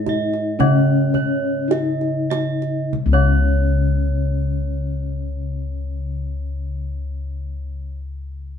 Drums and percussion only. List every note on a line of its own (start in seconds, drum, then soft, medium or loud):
0.06 kendang slap soft
0.06 kendang high soft
0.06 kendang low soft
0.33 kendang slap soft
0.60 kendang low medium
1.14 kendang slap soft
1.14 kendang low medium
1.71 kendang slap soft
1.71 kendang high soft
2.01 kendang slap soft
2.31 kendang slap soft
2.31 kendang high medium
2.62 kendang slap soft
2.93 kendang low medium